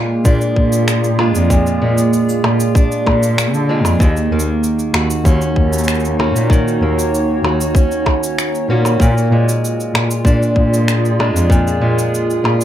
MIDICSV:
0, 0, Header, 1, 6, 480
1, 0, Start_track
1, 0, Key_signature, -6, "minor"
1, 0, Tempo, 625000
1, 1157, Time_signature, 4, 2, 24, 8
1, 9709, End_track
2, 0, Start_track
2, 0, Title_t, "Ambient pad"
2, 0, Program_c, 0, 92
2, 0, Note_on_c, 0, 58, 82
2, 0, Note_on_c, 0, 65, 81
2, 0, Note_on_c, 0, 68, 93
2, 645, Note_on_c, 0, 74, 77
2, 3069, Note_off_c, 0, 65, 0
2, 3078, Note_off_c, 0, 74, 0
2, 3218, Note_on_c, 0, 63, 75
2, 3406, Note_on_c, 0, 66, 97
2, 4150, Note_on_c, 0, 73, 88
2, 4516, Note_off_c, 0, 68, 0
2, 6914, Note_off_c, 0, 73, 0
2, 6916, Note_off_c, 0, 66, 0
2, 6920, Note_off_c, 0, 63, 0
2, 6977, Note_on_c, 0, 65, 89
2, 7376, Note_on_c, 0, 68, 79
2, 7564, Note_on_c, 0, 74, 84
2, 9709, Note_off_c, 0, 58, 0
2, 9709, Note_off_c, 0, 65, 0
2, 9709, Note_off_c, 0, 68, 0
2, 9709, Note_off_c, 0, 74, 0
2, 9709, End_track
3, 0, Start_track
3, 0, Title_t, "Steel-string acoustic guitar"
3, 0, Program_c, 1, 25
3, 0, Note_on_c, 1, 46, 87
3, 0, Note_on_c, 1, 56, 57
3, 0, Note_on_c, 1, 65, 61
3, 194, Note_on_c, 1, 62, 65
3, 904, Note_off_c, 1, 56, 0
3, 910, Note_off_c, 1, 62, 0
3, 914, Note_off_c, 1, 65, 0
3, 914, Note_on_c, 1, 56, 59
3, 919, Note_on_c, 1, 62, 59
3, 923, Note_on_c, 1, 65, 68
3, 1146, Note_off_c, 1, 46, 0
3, 1156, Note_on_c, 1, 46, 84
3, 1384, Note_off_c, 1, 56, 0
3, 1394, Note_on_c, 1, 56, 60
3, 1867, Note_off_c, 1, 65, 0
3, 1876, Note_on_c, 1, 65, 66
3, 2106, Note_off_c, 1, 62, 0
3, 2115, Note_on_c, 1, 62, 74
3, 2825, Note_off_c, 1, 56, 0
3, 2829, Note_off_c, 1, 62, 0
3, 2834, Note_on_c, 1, 56, 63
3, 2836, Note_off_c, 1, 65, 0
3, 2838, Note_on_c, 1, 62, 57
3, 2846, Note_on_c, 1, 65, 73
3, 3076, Note_off_c, 1, 46, 0
3, 3076, Note_on_c, 1, 51, 95
3, 3123, Note_off_c, 1, 56, 0
3, 3125, Note_off_c, 1, 62, 0
3, 3129, Note_off_c, 1, 65, 0
3, 3319, Note_on_c, 1, 58, 64
3, 3797, Note_on_c, 1, 66, 66
3, 4036, Note_on_c, 1, 61, 69
3, 4750, Note_off_c, 1, 61, 0
3, 4752, Note_off_c, 1, 58, 0
3, 4755, Note_on_c, 1, 58, 62
3, 4757, Note_off_c, 1, 66, 0
3, 4760, Note_on_c, 1, 61, 61
3, 4765, Note_on_c, 1, 66, 69
3, 4988, Note_off_c, 1, 51, 0
3, 4997, Note_on_c, 1, 51, 92
3, 5238, Note_off_c, 1, 58, 0
3, 5241, Note_on_c, 1, 58, 64
3, 5710, Note_off_c, 1, 66, 0
3, 5719, Note_on_c, 1, 66, 67
3, 5952, Note_off_c, 1, 61, 0
3, 5961, Note_on_c, 1, 61, 67
3, 6675, Note_off_c, 1, 61, 0
3, 6677, Note_off_c, 1, 58, 0
3, 6678, Note_off_c, 1, 66, 0
3, 6680, Note_on_c, 1, 58, 63
3, 6684, Note_on_c, 1, 61, 60
3, 6689, Note_on_c, 1, 66, 62
3, 6917, Note_off_c, 1, 51, 0
3, 6920, Note_on_c, 1, 46, 85
3, 6969, Note_off_c, 1, 61, 0
3, 6971, Note_off_c, 1, 66, 0
3, 7156, Note_off_c, 1, 58, 0
3, 7159, Note_on_c, 1, 56, 59
3, 7639, Note_on_c, 1, 65, 62
3, 7875, Note_on_c, 1, 62, 70
3, 8587, Note_off_c, 1, 56, 0
3, 8593, Note_off_c, 1, 62, 0
3, 8595, Note_off_c, 1, 65, 0
3, 8596, Note_on_c, 1, 56, 59
3, 8602, Note_on_c, 1, 62, 62
3, 8606, Note_on_c, 1, 65, 64
3, 8827, Note_off_c, 1, 46, 0
3, 8836, Note_on_c, 1, 46, 91
3, 9064, Note_off_c, 1, 56, 0
3, 9073, Note_on_c, 1, 56, 66
3, 9544, Note_off_c, 1, 65, 0
3, 9554, Note_on_c, 1, 65, 69
3, 9709, Note_off_c, 1, 46, 0
3, 9709, Note_off_c, 1, 56, 0
3, 9709, Note_off_c, 1, 62, 0
3, 9709, Note_off_c, 1, 65, 0
3, 9709, End_track
4, 0, Start_track
4, 0, Title_t, "Cello"
4, 0, Program_c, 2, 42
4, 190, Note_on_c, 2, 46, 99
4, 273, Note_off_c, 2, 46, 0
4, 433, Note_on_c, 2, 46, 85
4, 971, Note_off_c, 2, 46, 0
4, 1035, Note_on_c, 2, 41, 97
4, 1116, Note_off_c, 2, 41, 0
4, 1398, Note_on_c, 2, 46, 99
4, 1477, Note_off_c, 2, 46, 0
4, 1876, Note_on_c, 2, 46, 80
4, 1956, Note_off_c, 2, 46, 0
4, 2352, Note_on_c, 2, 46, 91
4, 2712, Note_on_c, 2, 50, 86
4, 2724, Note_off_c, 2, 46, 0
4, 2951, Note_on_c, 2, 41, 98
4, 2962, Note_off_c, 2, 50, 0
4, 3034, Note_off_c, 2, 41, 0
4, 3071, Note_on_c, 2, 39, 105
4, 3154, Note_off_c, 2, 39, 0
4, 3307, Note_on_c, 2, 39, 94
4, 3392, Note_off_c, 2, 39, 0
4, 3789, Note_on_c, 2, 39, 84
4, 3873, Note_off_c, 2, 39, 0
4, 4030, Note_on_c, 2, 39, 100
4, 4113, Note_off_c, 2, 39, 0
4, 4271, Note_on_c, 2, 39, 85
4, 4810, Note_off_c, 2, 39, 0
4, 4872, Note_on_c, 2, 46, 101
4, 4954, Note_off_c, 2, 46, 0
4, 5230, Note_on_c, 2, 39, 89
4, 5313, Note_off_c, 2, 39, 0
4, 5705, Note_on_c, 2, 39, 79
4, 5791, Note_off_c, 2, 39, 0
4, 6671, Note_on_c, 2, 46, 92
4, 6834, Note_off_c, 2, 46, 0
4, 6908, Note_on_c, 2, 46, 99
4, 6992, Note_off_c, 2, 46, 0
4, 7151, Note_on_c, 2, 46, 97
4, 7233, Note_off_c, 2, 46, 0
4, 7632, Note_on_c, 2, 46, 81
4, 7714, Note_off_c, 2, 46, 0
4, 7868, Note_on_c, 2, 46, 94
4, 7952, Note_off_c, 2, 46, 0
4, 8109, Note_on_c, 2, 46, 84
4, 8649, Note_off_c, 2, 46, 0
4, 8710, Note_on_c, 2, 41, 99
4, 8793, Note_off_c, 2, 41, 0
4, 9071, Note_on_c, 2, 46, 94
4, 9154, Note_off_c, 2, 46, 0
4, 9552, Note_on_c, 2, 46, 84
4, 9634, Note_off_c, 2, 46, 0
4, 9709, End_track
5, 0, Start_track
5, 0, Title_t, "Percussion blips"
5, 913, Note_on_c, 9, 77, 75
5, 990, Note_off_c, 9, 77, 0
5, 1875, Note_on_c, 9, 77, 87
5, 1951, Note_off_c, 9, 77, 0
5, 2358, Note_on_c, 9, 77, 80
5, 2435, Note_off_c, 9, 77, 0
5, 2956, Note_on_c, 9, 77, 60
5, 3032, Note_off_c, 9, 77, 0
5, 3794, Note_on_c, 9, 77, 79
5, 3871, Note_off_c, 9, 77, 0
5, 4760, Note_on_c, 9, 77, 76
5, 4837, Note_off_c, 9, 77, 0
5, 5718, Note_on_c, 9, 77, 76
5, 5795, Note_off_c, 9, 77, 0
5, 6193, Note_on_c, 9, 77, 73
5, 6269, Note_off_c, 9, 77, 0
5, 6797, Note_on_c, 9, 77, 53
5, 6874, Note_off_c, 9, 77, 0
5, 7642, Note_on_c, 9, 77, 77
5, 7718, Note_off_c, 9, 77, 0
5, 8602, Note_on_c, 9, 77, 74
5, 8679, Note_off_c, 9, 77, 0
5, 9563, Note_on_c, 9, 77, 75
5, 9640, Note_off_c, 9, 77, 0
5, 9709, End_track
6, 0, Start_track
6, 0, Title_t, "Drums"
6, 193, Note_on_c, 9, 36, 127
6, 193, Note_on_c, 9, 69, 67
6, 269, Note_off_c, 9, 36, 0
6, 270, Note_off_c, 9, 69, 0
6, 317, Note_on_c, 9, 69, 36
6, 394, Note_off_c, 9, 69, 0
6, 433, Note_on_c, 9, 36, 64
6, 510, Note_off_c, 9, 36, 0
6, 557, Note_on_c, 9, 69, 64
6, 634, Note_off_c, 9, 69, 0
6, 674, Note_on_c, 9, 26, 78
6, 679, Note_on_c, 9, 69, 52
6, 751, Note_off_c, 9, 26, 0
6, 756, Note_off_c, 9, 69, 0
6, 799, Note_on_c, 9, 69, 35
6, 876, Note_off_c, 9, 69, 0
6, 1038, Note_on_c, 9, 69, 60
6, 1114, Note_off_c, 9, 69, 0
6, 1153, Note_on_c, 9, 36, 118
6, 1157, Note_on_c, 9, 69, 60
6, 1230, Note_off_c, 9, 36, 0
6, 1234, Note_off_c, 9, 69, 0
6, 1279, Note_on_c, 9, 69, 34
6, 1356, Note_off_c, 9, 69, 0
6, 1520, Note_on_c, 9, 69, 66
6, 1596, Note_off_c, 9, 69, 0
6, 1638, Note_on_c, 9, 69, 53
6, 1715, Note_off_c, 9, 69, 0
6, 1760, Note_on_c, 9, 69, 34
6, 1837, Note_off_c, 9, 69, 0
6, 1998, Note_on_c, 9, 69, 74
6, 2075, Note_off_c, 9, 69, 0
6, 2113, Note_on_c, 9, 36, 127
6, 2123, Note_on_c, 9, 69, 61
6, 2190, Note_off_c, 9, 36, 0
6, 2199, Note_off_c, 9, 69, 0
6, 2240, Note_on_c, 9, 69, 36
6, 2317, Note_off_c, 9, 69, 0
6, 2354, Note_on_c, 9, 36, 67
6, 2430, Note_off_c, 9, 36, 0
6, 2481, Note_on_c, 9, 69, 70
6, 2558, Note_off_c, 9, 69, 0
6, 2597, Note_on_c, 9, 26, 82
6, 2602, Note_on_c, 9, 69, 58
6, 2674, Note_off_c, 9, 26, 0
6, 2679, Note_off_c, 9, 69, 0
6, 2720, Note_on_c, 9, 69, 36
6, 2797, Note_off_c, 9, 69, 0
6, 2960, Note_on_c, 9, 69, 65
6, 3037, Note_off_c, 9, 69, 0
6, 3073, Note_on_c, 9, 36, 123
6, 3083, Note_on_c, 9, 69, 55
6, 3149, Note_off_c, 9, 36, 0
6, 3160, Note_off_c, 9, 69, 0
6, 3201, Note_on_c, 9, 69, 35
6, 3278, Note_off_c, 9, 69, 0
6, 3376, Note_on_c, 9, 69, 70
6, 3453, Note_off_c, 9, 69, 0
6, 3561, Note_on_c, 9, 69, 56
6, 3638, Note_off_c, 9, 69, 0
6, 3679, Note_on_c, 9, 69, 35
6, 3756, Note_off_c, 9, 69, 0
6, 3794, Note_on_c, 9, 26, 88
6, 3871, Note_off_c, 9, 26, 0
6, 3920, Note_on_c, 9, 69, 73
6, 3997, Note_off_c, 9, 69, 0
6, 4033, Note_on_c, 9, 36, 127
6, 4040, Note_on_c, 9, 69, 61
6, 4109, Note_off_c, 9, 36, 0
6, 4117, Note_off_c, 9, 69, 0
6, 4159, Note_on_c, 9, 69, 35
6, 4235, Note_off_c, 9, 69, 0
6, 4272, Note_on_c, 9, 36, 67
6, 4349, Note_off_c, 9, 36, 0
6, 4400, Note_on_c, 9, 69, 66
6, 4441, Note_off_c, 9, 69, 0
6, 4441, Note_on_c, 9, 69, 54
6, 4482, Note_off_c, 9, 69, 0
6, 4482, Note_on_c, 9, 69, 41
6, 4516, Note_on_c, 9, 26, 80
6, 4521, Note_off_c, 9, 69, 0
6, 4521, Note_on_c, 9, 69, 60
6, 4564, Note_off_c, 9, 69, 0
6, 4564, Note_on_c, 9, 69, 30
6, 4593, Note_off_c, 9, 26, 0
6, 4607, Note_off_c, 9, 69, 0
6, 4607, Note_on_c, 9, 69, 24
6, 4646, Note_off_c, 9, 69, 0
6, 4646, Note_on_c, 9, 69, 36
6, 4723, Note_off_c, 9, 69, 0
6, 4886, Note_on_c, 9, 69, 67
6, 4963, Note_off_c, 9, 69, 0
6, 4990, Note_on_c, 9, 36, 121
6, 5013, Note_on_c, 9, 69, 55
6, 5067, Note_off_c, 9, 36, 0
6, 5089, Note_off_c, 9, 69, 0
6, 5130, Note_on_c, 9, 69, 33
6, 5207, Note_off_c, 9, 69, 0
6, 5369, Note_on_c, 9, 69, 66
6, 5446, Note_off_c, 9, 69, 0
6, 5488, Note_on_c, 9, 69, 56
6, 5565, Note_off_c, 9, 69, 0
6, 5843, Note_on_c, 9, 69, 72
6, 5920, Note_off_c, 9, 69, 0
6, 5950, Note_on_c, 9, 36, 121
6, 5960, Note_on_c, 9, 69, 55
6, 6027, Note_off_c, 9, 36, 0
6, 6036, Note_off_c, 9, 69, 0
6, 6078, Note_on_c, 9, 69, 32
6, 6155, Note_off_c, 9, 69, 0
6, 6191, Note_on_c, 9, 36, 65
6, 6267, Note_off_c, 9, 36, 0
6, 6324, Note_on_c, 9, 69, 68
6, 6400, Note_off_c, 9, 69, 0
6, 6440, Note_on_c, 9, 26, 70
6, 6445, Note_on_c, 9, 69, 54
6, 6516, Note_off_c, 9, 26, 0
6, 6521, Note_off_c, 9, 69, 0
6, 6565, Note_on_c, 9, 69, 36
6, 6642, Note_off_c, 9, 69, 0
6, 6802, Note_on_c, 9, 69, 64
6, 6879, Note_off_c, 9, 69, 0
6, 6910, Note_on_c, 9, 36, 112
6, 6925, Note_on_c, 9, 69, 52
6, 6987, Note_off_c, 9, 36, 0
6, 7001, Note_off_c, 9, 69, 0
6, 7048, Note_on_c, 9, 69, 30
6, 7124, Note_off_c, 9, 69, 0
6, 7287, Note_on_c, 9, 69, 70
6, 7364, Note_off_c, 9, 69, 0
6, 7409, Note_on_c, 9, 69, 56
6, 7486, Note_off_c, 9, 69, 0
6, 7528, Note_on_c, 9, 69, 34
6, 7605, Note_off_c, 9, 69, 0
6, 7642, Note_on_c, 9, 26, 80
6, 7718, Note_off_c, 9, 26, 0
6, 7763, Note_on_c, 9, 69, 71
6, 7840, Note_off_c, 9, 69, 0
6, 7870, Note_on_c, 9, 36, 118
6, 7885, Note_on_c, 9, 69, 59
6, 7947, Note_off_c, 9, 36, 0
6, 7962, Note_off_c, 9, 69, 0
6, 8006, Note_on_c, 9, 69, 34
6, 8083, Note_off_c, 9, 69, 0
6, 8109, Note_on_c, 9, 36, 64
6, 8186, Note_off_c, 9, 36, 0
6, 8247, Note_on_c, 9, 69, 61
6, 8324, Note_off_c, 9, 69, 0
6, 8357, Note_on_c, 9, 26, 73
6, 8362, Note_on_c, 9, 69, 51
6, 8434, Note_off_c, 9, 26, 0
6, 8439, Note_off_c, 9, 69, 0
6, 8488, Note_on_c, 9, 69, 34
6, 8564, Note_off_c, 9, 69, 0
6, 8727, Note_on_c, 9, 69, 63
6, 8804, Note_off_c, 9, 69, 0
6, 8830, Note_on_c, 9, 36, 103
6, 8847, Note_on_c, 9, 69, 51
6, 8907, Note_off_c, 9, 36, 0
6, 8924, Note_off_c, 9, 69, 0
6, 8966, Note_on_c, 9, 69, 33
6, 9043, Note_off_c, 9, 69, 0
6, 9206, Note_on_c, 9, 69, 64
6, 9283, Note_off_c, 9, 69, 0
6, 9328, Note_on_c, 9, 69, 53
6, 9405, Note_off_c, 9, 69, 0
6, 9448, Note_on_c, 9, 69, 35
6, 9525, Note_off_c, 9, 69, 0
6, 9684, Note_on_c, 9, 69, 66
6, 9709, Note_off_c, 9, 69, 0
6, 9709, End_track
0, 0, End_of_file